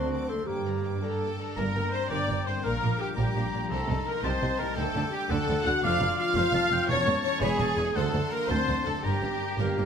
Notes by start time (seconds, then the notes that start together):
Already playing: D2 D3 F#3 A3 C4 D4 E4 F#4 C5 D5 A5 C6
0.10 C4 C5 F#5 D6
0.28 A3 C4 D4 A4 A5 C6
0.46 G2 G3 A#3 G4 G5 A#5 D6
0.65 D3 D4 D5 A#5
0.84 A#3 D4 G5 D6
1.01 D4 G4 A4 D5 A5 A#5
1.20 A#3 D4 G5 D6
1.39 G3 D4 D5 A#5
1.56 G1 G2 A#3 A#4 A#5
1.66 D3
1.75 G1 G2 G3 G5
1.84 D4
1.92 C4 A#4 C5 C6
2.02 G4
2.10 G1 G2 D4 A#4 D5 G5 D6
2.19 A#5
2.29 G1 G2 D5 G5
2.37 G4
2.46 G1 G2 C4 A#4 C5 D5 C6
2.56 G3
2.63 A#1 A#2 A#3 A#4 F5 A#5 D6
2.73 A#3
2.82 A#1 A#2 F3 F5
2.91 D4
3.00 G3 G4 A#4 G5
3.09 F4
3.16 A#1 A#2 G3 G4 A#4 D5 G5 A#5
3.27 A#5
3.35 A#1 A#2 D5 F5
3.44 F4
3.53 A#1 A#2 A#4 D5
3.63 F3
3.70 C2 C3 A3 G4 A4 A5 C6
3.80 C4
3.89 C2 C3 G3 D#5
3.98 D#4
4.05 A#3 G4 A#4 A#5
4.16 D#4
4.23 C2 C3 C4 G4 C5 D#5 A5 C6
4.33 G5
4.41 C2 C3 D#5
4.52 G4
4.58 C2 C3 A#3 D#4 A#4 C5 A#5
4.69 G3
4.76 D2 D3 A3 A4 G5 A5 D6
4.87 G3
4.94 D2 D3 D4 G5
5.04 G4
5.12 G3 D4 G4 G5
5.22 D5
5.29 D2 D3 A3 A4 F#5 A5
5.40 A3
5.48 D2 D3 D4 F#5
5.58 F#4
5.64 D2 D3 F#4 D5 F#5 F#6
5.76 D5
5.83 F1 F2 F3 F4 C5 D5 F5 C6 F6
5.93 A3
6.00 F1 F2 C4 A5
6.18 C4 F4 F5 F6
6.27 C5
6.36 F1 F2 C5
6.44 C5
6.53 F1 F2 A5
6.62 C5
6.71 F1 F2 F5 G5
6.80 C4
6.88 E1 E2 E3 C#4 C#5 A5 C#6
6.97 A3
7.06 E1 E2 C#4 A5
7.15 C#5
7.23 C#4 E4 C#5 C#6
7.40 E1 E2 G#4 C#5 G#5 B5 C#6
7.44 G#4
7.51 E5
7.59 E1 E2 A5 C#6
7.68 C#5
7.77 E1 E2 A4 E5 G#5
7.87 C#4
7.95 D2 D3 A3 A4 C5 F#5 A5 C6
8.05 F#3
8.13 D2 D4 F#5
8.23 C5
8.31 A#3 F#4 A#4 A#5
8.41 D5
8.48 D2 C4 C5 A5 C6
8.59 F#5
8.66 D2 F#5 C6
8.77 D5
8.84 D2 A3 F#4 A4 D5 A5
8.95 D4
9.03 G1 G2 G3 G4 A#4 G5 A#5
9.13 D3
9.22 G1 G2 G3 G5
9.31 D4
9.41 A#4
9.50 G4
9.58 G1 G2 A#3 G4 A#4 D5
9.69 A#5
9.77 G1 G2 D5 G5